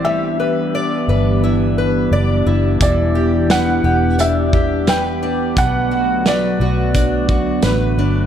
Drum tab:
HH |--------|x-x-x-x-|x-x-x-x-|
SD |--------|--o---o-|--o---o-|
BD |--------|o----o--|o---oo--|